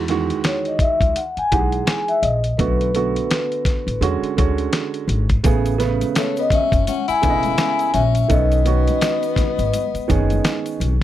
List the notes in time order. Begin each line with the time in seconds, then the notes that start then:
Already playing: E2
0.08 D#3 E3 G#3 F#4, snare, closed hi-hat
0.30 closed hi-hat
0.44 C#5, snare, closed hi-hat
0.65 D#5, closed hi-hat
0.79 E5, kick, closed hi-hat
1.01 C#2, kick, closed hi-hat
1.16 F#5, closed hi-hat
1.37 G#5, muted upright bass stroke, closed hi-hat
1.51 B1 E3 G#3 D#4 G4 F#5, kick, closed hi-hat
1.59 G#4
1.72 closed hi-hat
1.86 G#5, snare, closed hi-hat
2.08 E5, closed hi-hat
2.21 A#1 D#5, closed hi-hat
2.44 closed hi-hat
2.57 B1 D3 A3 B3 F#4 B4, kick, closed hi-hat
2.81 closed hi-hat
2.94 D3 A3 B3 F#4, closed hi-hat
3.16 closed hi-hat
3.31 snare, closed hi-hat
3.52 closed hi-hat
3.65 kick, snare, closed hi-hat
3.87 A1, closed hi-hat
4.01 E2 D3 G#3 C#4 F#4, closed hi-hat
4.22 muted upright bass stroke, closed hi-hat
4.37 D2 D3 G#3 C#4 F#4, kick, closed hi-hat
4.58 closed hi-hat
4.73 snare, closed hi-hat
4.94 closed hi-hat
5.08 G#1, closed hi-hat
5.29 kick, closed hi-hat
5.43 A1 C#3 A3 B3 G#4, kick, closed hi-hat, shaker
5.66 closed hi-hat, shaker
5.78 C#3 A3 B3 B4, snare, closed hi-hat, shaker
6.01 closed hi-hat, high conga, shaker
6.15 A3 C#5, snare, closed hi-hat, shaker
6.37 B3 D#5, closed hi-hat, shaker
6.50 C#4 E5, kick, closed hi-hat, high conga, low conga, shaker
6.72 F#1, kick, closed hi-hat, shaker
6.87 C#4 F#5, closed hi-hat, high conga, shaker
7.08 E4 G#5, muted upright bass stroke, closed hi-hat, shaker
7.22 E1 C#3 A3 B3 D4, kick, closed hi-hat, low conga, shaker
7.30 D#5
7.43 closed hi-hat, high conga, shaker
7.58 snare, closed hi-hat, shaker
7.79 closed hi-hat, shaker
7.94 A#1 C#4 E5, closed hi-hat, low conga, shaker
8.15 closed hi-hat, shaker
8.28 B1 D#3 B3 C#4 A4 D#5, kick, closed hi-hat, shaker
8.52 closed hi-hat, shaker
8.65 D#3 B3 C#4 F#4, closed hi-hat, shaker
8.88 closed hi-hat, high conga, shaker
9.01 snare, closed hi-hat, shaker
9.23 closed hi-hat, shaker
9.36 kick, snare, closed hi-hat, high conga, low conga, shaker
9.59 G#1, closed hi-hat, shaker
9.74 closed hi-hat, high conga, shaker
9.94 muted upright bass stroke, closed hi-hat, shaker
10.08 F#1 D#3 B3 C#4 G#4, kick, closed hi-hat, low conga, shaker
10.30 closed hi-hat, high conga, shaker
10.44 snare, closed hi-hat, shaker
10.66 closed hi-hat, shaker
10.80 B1, closed hi-hat, low conga, shaker